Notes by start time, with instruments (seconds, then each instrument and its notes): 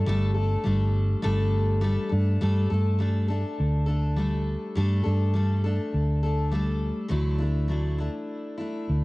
0.06 fingered electric bass G1, steel-string acoustic guitar G3 A3 D4 A4
0.34 steel-string acoustic guitar A3 D4 A4
0.64 fingered electric bass G1, steel-string acoustic guitar G3 A3 D4 A4
1.22 fingered electric bass G1, steel-string acoustic guitar G3 A3 D4 A4
1.81 steel-string acoustic guitar G3 A3 D4 A4
2.09 fingered electric bass G2, steel-string acoustic guitar A3 D4 A4
2.41 fingered electric bass G2, steel-string acoustic guitar G3 A3 D4 A4
2.70 fingered electric bass G2, steel-string acoustic guitar A3 D4 A4
2.98 steel-string acoustic guitar G3 A3 D4 A4
3.28 steel-string acoustic guitar A3 D4 A4
3.60 fingered electric bass D2
3.86 steel-string acoustic guitar A3 D4 A4
4.16 steel-string acoustic guitar G3 A3 D4 A4
4.75 fingered electric bass G2, steel-string acoustic guitar G3 A3 D4 A4
5.04 fingered electric bass G2, steel-string acoustic guitar A3 D4 A4
5.34 steel-string acoustic guitar G3 A3 D4 A4
5.64 steel-string acoustic guitar A3 D4 A4
5.94 fingered electric bass D2
6.23 steel-string acoustic guitar A3 D4 A4
6.52 steel-string acoustic guitar G3 A3 D4 A4
7.08 fingered electric bass D2, steel-string acoustic guitar D3 F#3 A3 D4 E4
7.38 steel-string acoustic guitar A3 D4 E4
7.68 steel-string acoustic guitar F#3 A3 D4 E4
7.98 steel-string acoustic guitar A3 D4 E4
8.57 steel-string acoustic guitar A3 D4 E4
8.90 fingered electric bass D2